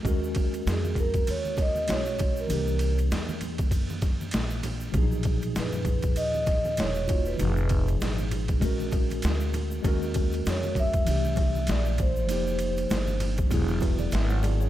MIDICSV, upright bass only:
0, 0, Header, 1, 2, 480
1, 0, Start_track
1, 0, Tempo, 612245
1, 39, Time_signature, 4, 2, 24, 8
1, 11520, End_track
2, 0, Start_track
2, 0, Title_t, "Upright bass"
2, 0, Program_c, 0, 32
2, 39, Note_on_c, 0, 39, 95
2, 495, Note_off_c, 0, 39, 0
2, 522, Note_on_c, 0, 41, 87
2, 977, Note_off_c, 0, 41, 0
2, 1004, Note_on_c, 0, 39, 92
2, 1458, Note_off_c, 0, 39, 0
2, 1480, Note_on_c, 0, 35, 86
2, 1936, Note_off_c, 0, 35, 0
2, 1960, Note_on_c, 0, 36, 96
2, 2416, Note_off_c, 0, 36, 0
2, 2441, Note_on_c, 0, 40, 77
2, 2910, Note_off_c, 0, 40, 0
2, 2910, Note_on_c, 0, 42, 90
2, 3370, Note_off_c, 0, 42, 0
2, 3403, Note_on_c, 0, 34, 92
2, 3857, Note_off_c, 0, 34, 0
2, 3872, Note_on_c, 0, 35, 99
2, 4358, Note_on_c, 0, 42, 85
2, 4370, Note_off_c, 0, 35, 0
2, 4839, Note_off_c, 0, 42, 0
2, 4839, Note_on_c, 0, 39, 102
2, 5295, Note_off_c, 0, 39, 0
2, 5317, Note_on_c, 0, 28, 77
2, 5774, Note_off_c, 0, 28, 0
2, 5798, Note_on_c, 0, 29, 100
2, 6255, Note_off_c, 0, 29, 0
2, 6282, Note_on_c, 0, 32, 81
2, 6737, Note_off_c, 0, 32, 0
2, 6754, Note_on_c, 0, 34, 99
2, 7213, Note_off_c, 0, 34, 0
2, 7242, Note_on_c, 0, 38, 78
2, 7697, Note_off_c, 0, 38, 0
2, 7719, Note_on_c, 0, 39, 112
2, 8175, Note_off_c, 0, 39, 0
2, 8205, Note_on_c, 0, 41, 84
2, 8658, Note_off_c, 0, 41, 0
2, 8682, Note_on_c, 0, 36, 92
2, 9137, Note_off_c, 0, 36, 0
2, 9161, Note_on_c, 0, 34, 91
2, 9636, Note_off_c, 0, 34, 0
2, 9636, Note_on_c, 0, 29, 104
2, 10094, Note_off_c, 0, 29, 0
2, 10116, Note_on_c, 0, 31, 84
2, 10574, Note_off_c, 0, 31, 0
2, 10592, Note_on_c, 0, 28, 102
2, 11052, Note_off_c, 0, 28, 0
2, 11075, Note_on_c, 0, 32, 93
2, 11520, Note_off_c, 0, 32, 0
2, 11520, End_track
0, 0, End_of_file